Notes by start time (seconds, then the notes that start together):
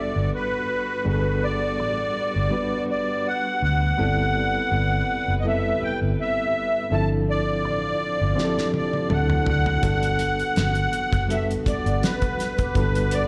Already playing: G3 B3 D4 F#4 A4 D5 E5
0.16 G1
0.35 B4
1.05 G1 G3 B3 D4 F#4 G#4 B4
1.13 A4
1.44 D5
1.79 A1
2.36 G1
2.51 G3 B3 D4 F#4 B4
2.90 D5
3.27 F#5
3.62 D2 F#5
3.97 G1 C3 G3 B3 C4 E4 A4 B4 D5
4.72 G1
5.28 F#1
5.40 G3 B3 D#5
5.45 C4 E4 A4 E5
5.82 G5, muted fingered electric bass stroke
6.02 G1
6.21 E5
6.90 G1 D3 F3 C4 D4 E4 A4 A5
7.30 D5
7.64 A1
8.21 G1
8.36 F3 C4 D4 E4 G4, snare
8.44 A4
8.58 snare
8.74 D5, high tom
8.93 high tom
9.09 D2 E3 F#3 C4 D4 E4 F#4 A4, mid tom
9.13 F#5
9.30 mid tom
9.46 D2 D5 F#5, floor tom
9.66 floor tom
9.82 G1 G3 B3 D4 F#4 A4, kick, closed hi-hat
10.03 closed hi-hat
10.19 closed hi-hat
10.39 closed hi-hat
10.56 G1, snare, closed hi-hat
10.75 closed hi-hat
10.93 closed hi-hat
11.13 F#1, kick, closed hi-hat
11.28 G3 B3 D4 F#4 A4 E5, closed hi-hat
11.51 closed hi-hat
11.66 D5 F#5, muted fingered electric bass stroke, kick, closed hi-hat
11.86 G1, closed hi-hat
12.03 B4, snare, closed hi-hat
12.22 kick, closed hi-hat
12.39 B5, snare, closed hi-hat
12.58 kick, closed hi-hat
12.63 D6
12.74 G1 G3 B3 D4 F#4 A4 B4, kick, closed hi-hat
12.95 closed hi-hat
13.11 D5, closed hi-hat